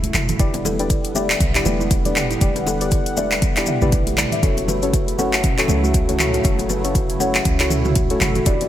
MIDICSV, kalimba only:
0, 0, Header, 1, 2, 480
1, 0, Start_track
1, 0, Tempo, 504202
1, 377, Time_signature, 4, 2, 24, 8
1, 8267, End_track
2, 0, Start_track
2, 0, Title_t, "Kalimba"
2, 0, Program_c, 0, 108
2, 377, Note_on_c, 0, 64, 79
2, 503, Note_off_c, 0, 64, 0
2, 619, Note_on_c, 0, 69, 98
2, 743, Note_off_c, 0, 69, 0
2, 859, Note_on_c, 0, 64, 80
2, 991, Note_off_c, 0, 64, 0
2, 1099, Note_on_c, 0, 76, 73
2, 1173, Note_off_c, 0, 76, 0
2, 1339, Note_on_c, 0, 59, 81
2, 1464, Note_off_c, 0, 59, 0
2, 1478, Note_on_c, 0, 64, 97
2, 1568, Note_off_c, 0, 64, 0
2, 1718, Note_on_c, 0, 64, 99
2, 1808, Note_off_c, 0, 64, 0
2, 1959, Note_on_c, 0, 67, 74
2, 2012, Note_off_c, 0, 67, 0
2, 2197, Note_on_c, 0, 64, 92
2, 2287, Note_off_c, 0, 64, 0
2, 2298, Note_on_c, 0, 64, 77
2, 2423, Note_off_c, 0, 64, 0
2, 2539, Note_on_c, 0, 69, 98
2, 2664, Note_off_c, 0, 69, 0
2, 2779, Note_on_c, 0, 64, 78
2, 2911, Note_off_c, 0, 64, 0
2, 3020, Note_on_c, 0, 76, 74
2, 3094, Note_off_c, 0, 76, 0
2, 3260, Note_on_c, 0, 59, 80
2, 3384, Note_off_c, 0, 59, 0
2, 3399, Note_on_c, 0, 64, 95
2, 3488, Note_off_c, 0, 64, 0
2, 3500, Note_on_c, 0, 76, 71
2, 3624, Note_off_c, 0, 76, 0
2, 3639, Note_on_c, 0, 71, 73
2, 3728, Note_off_c, 0, 71, 0
2, 3740, Note_on_c, 0, 64, 93
2, 3814, Note_off_c, 0, 64, 0
2, 3879, Note_on_c, 0, 67, 72
2, 3968, Note_off_c, 0, 67, 0
2, 3979, Note_on_c, 0, 64, 69
2, 4053, Note_off_c, 0, 64, 0
2, 4118, Note_on_c, 0, 76, 71
2, 4213, Note_off_c, 0, 76, 0
2, 4217, Note_on_c, 0, 66, 80
2, 4342, Note_off_c, 0, 66, 0
2, 4457, Note_on_c, 0, 71, 98
2, 4583, Note_off_c, 0, 71, 0
2, 4697, Note_on_c, 0, 66, 78
2, 4829, Note_off_c, 0, 66, 0
2, 4936, Note_on_c, 0, 78, 73
2, 5012, Note_off_c, 0, 78, 0
2, 5177, Note_on_c, 0, 61, 77
2, 5302, Note_off_c, 0, 61, 0
2, 5317, Note_on_c, 0, 66, 94
2, 5408, Note_off_c, 0, 66, 0
2, 5557, Note_on_c, 0, 66, 98
2, 5647, Note_off_c, 0, 66, 0
2, 5798, Note_on_c, 0, 69, 76
2, 5852, Note_off_c, 0, 69, 0
2, 6037, Note_on_c, 0, 66, 95
2, 6128, Note_off_c, 0, 66, 0
2, 6137, Note_on_c, 0, 66, 80
2, 6263, Note_off_c, 0, 66, 0
2, 6378, Note_on_c, 0, 71, 97
2, 6503, Note_off_c, 0, 71, 0
2, 6619, Note_on_c, 0, 66, 80
2, 6751, Note_off_c, 0, 66, 0
2, 6858, Note_on_c, 0, 78, 75
2, 6933, Note_off_c, 0, 78, 0
2, 7097, Note_on_c, 0, 61, 79
2, 7223, Note_off_c, 0, 61, 0
2, 7238, Note_on_c, 0, 66, 97
2, 7328, Note_off_c, 0, 66, 0
2, 7478, Note_on_c, 0, 66, 103
2, 7568, Note_off_c, 0, 66, 0
2, 7716, Note_on_c, 0, 69, 74
2, 7771, Note_off_c, 0, 69, 0
2, 7955, Note_on_c, 0, 66, 95
2, 8047, Note_off_c, 0, 66, 0
2, 8057, Note_on_c, 0, 64, 84
2, 8183, Note_off_c, 0, 64, 0
2, 8267, End_track
0, 0, End_of_file